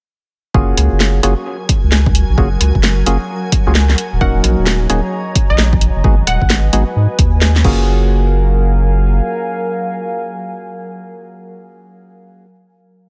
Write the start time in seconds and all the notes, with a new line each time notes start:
0.54 F#1 F#3 A#3 C#4 F4 F#4 G#4 G#5, kick
0.71 A#4 G#5
0.77 C#2, cross-stick, open hi-hat
0.92 F#1
1.00 snare
1.23 F#1 A#3 C#4 F4 F#4 G#4, cross-stick, open hi-hat
1.69 kick, open hi-hat
1.84 C#2
1.92 snare
2.06 kick
2.15 open hi-hat
2.29 A#1
2.38 F#1 A#3 C#4 F4 F#4 G#4, kick
2.61 C#2, cross-stick, open hi-hat
2.75 F#1, kick
2.83 snare
3.06 F#1 A#3 C#4 F4 F#4 G#4, open hi-hat
3.52 kick, open hi-hat
3.67 C#2 A#3 C#4 F4 F#4 G#4
3.75 snare
3.90 snare
3.98 open hi-hat
4.13 D#1
4.21 D#1 A#3 C#4 D#4 F#4 A#4 F#5, kick
4.36 C#5
4.44 A#1, cross-stick, open hi-hat
4.58 D#1 A#5
4.67 snare
4.81 D#5
4.89 D#1 A#3 C#4 D#4 F#4 G#4, cross-stick, open hi-hat
5.35 kick, open hi-hat
5.50 A#1 D#5
5.58 snare
5.73 kick
5.81 open hi-hat
5.96 F#1
6.04 G#1 G#3 B3 D#4 F#4 G#4, kick
6.10 B4
6.27 D#1 F#5, cross-stick, open hi-hat
6.42 G#1, kick
6.50 snare
6.70 G#1 G#3 B3 D#4 F#4 G#4 G#5, open hi-hat
6.96 G#2
7.19 D#2, kick, open hi-hat
7.42 snare
7.56 snare
7.64 F#1 F#3 A#3 C#4 F4 F#4 G#4, kick, crash
7.73 A#4
8.03 F5
8.08 G#5